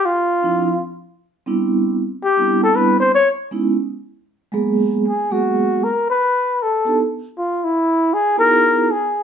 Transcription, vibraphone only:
0.42 0.66 F3 medium
0.42 0.66 C4 medium
0.42 0.66 D4 medium
0.42 0.66 E4 medium
1.46 1.95 G3 medium
1.46 1.95 B3 medium
1.46 1.95 C4 medium
1.46 1.95 D4 medium
1.46 1.96 E4 medium
2.37 2.74 G3 medium
2.37 2.74 B3 medium
2.37 2.73 C4 medium
2.37 2.74 D4 medium
2.37 2.74 E4 medium
2.74 2.98 G3 medium
2.74 2.98 B3 medium
2.74 2.97 C4 medium
2.74 2.98 D4 medium
2.74 2.98 E4 medium
3.51 3.74 G#3 medium
3.51 3.74 B3 medium
3.51 3.74 C#4 medium
3.51 3.75 D#4 medium
3.51 3.75 E4 medium
4.52 5.02 F#3 medium
4.52 5.02 G#3 medium
4.52 5.03 A#3 medium
4.52 5.03 B3 medium
4.52 5.03 G#4 medium
5.30 5.80 F#3 medium
5.30 5.80 G#3 medium
5.30 5.80 A#3 medium
5.30 5.80 B3 medium
5.30 5.80 G#4 medium
6.85 6.97 B3 medium
6.85 6.97 D4 medium
6.85 6.98 D#4 medium
6.85 6.98 G4 medium
6.85 6.98 A4 medium
8.37 8.88 B3 medium
8.37 8.88 D#4 medium
8.37 8.87 E4 medium
8.37 8.88 F#4 medium
8.37 8.89 G#4 medium

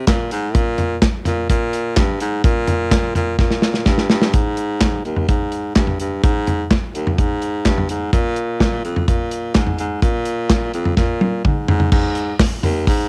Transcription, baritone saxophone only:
0.07 0.29 A#2 medium
0.32 0.56 G#2 loud
0.55 0.96 A#2 medium
1.26 1.48 A#2 loud
1.50 1.94 A#2 loud
1.97 2.19 G2 medium
2.21 2.43 G#2 loud
2.44 3.12 A#2 loud
3.16 3.38 A#2 loud
3.39 3.83 A#2 medium
3.86 4.09 G2 medium
4.10 4.32 G2 medium
4.34 5.01 G#2 medium
5.05 5.27 D#2 medium
5.29 5.73 G#2 medium
5.76 5.98 G2 medium
6.00 6.22 G2 medium
6.23 6.65 G#2 loud
6.95 7.20 D#2 medium
7.19 7.63 G#2 loud
7.66 7.88 G2 medium
7.90 8.12 G#2 medium
8.13 8.81 A#2 loud
8.84 9.06 F2 medium
9.08 9.52 A#2 medium
9.55 9.77 G#2 medium
9.79 10.01 G#2 medium
10.03 10.70 A#2 loud
10.74 10.96 F2 medium
10.97 11.41 A#2 medium
11.45 11.67 G#2 medium
11.69 11.91 G#2 medium
11.92 12.34 G#2 loud
12.64 12.86 D#2 loud
12.88 13.09 G#2 loud

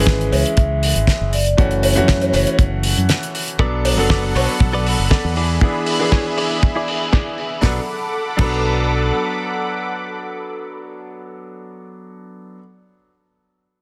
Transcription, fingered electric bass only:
0.00 0.29 G#1 medium
0.32 0.43 C#2 medium
0.57 0.92 C#2 medium
0.96 1.05 G#1 medium
1.21 1.55 F#1 medium
1.58 1.98 F#1 loud
1.97 2.30 F#2 medium
2.34 2.44 F#1 medium
2.59 2.93 F#1 medium
2.97 3.09 F#2 medium
3.59 3.98 B1 medium
3.98 4.32 F#1 medium
4.35 4.46 B1 medium
4.60 4.95 B1 medium
4.99 5.09 F#1 medium
5.24 5.58 E2 medium
7.63 7.78 B1 medium
8.39 9.10 B1 medium

